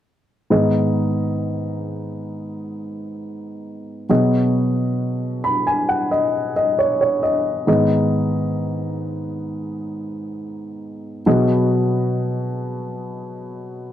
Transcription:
0.50 G#2 D#3 B3 D#4 G#4 D#5
4.09 B2 F#3 B3 F#4 G#4 D#5
5.44 B5
5.67 G#5
5.89 F#5
6.11 D#5
6.56 D#5
6.79 C#5
7.01 C#5
7.23 D#5
7.67 G#2 D#3 B3 D#4 G#4 D#5
11.26 B2 F#3 B3 F#4 G#4 D#5

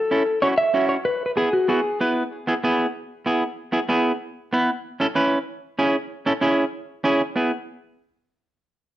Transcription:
Already playing: A4
0.11 C#4 E4 A4
0.42 C#4 E4 F#4 C#5
0.58 E5
0.74 C#4 E4 F#4
0.89 C#5
1.05 B4
1.26 B4
1.37 B3 E4 G#4
1.53 F#4
1.68 B3 E4 F#4 G#4
2.00 B3 E4 B4
2.47 B3 E4 G#4
2.64 B3 E4 G#4
3.26 B3 E4 G#4
3.72 B3 E4 G#4
3.89 B3 E4 G#4
4.53 B3 E4 B4
5.00 C#4 E4 A4
5.15 C#4 E4 B4
5.79 C#4 E4 G#4
6.26 C#4 E4 A4
6.41 C#4 E4 G#4
7.04 C#4 E4 G#4
7.36 B3 E4 G#4

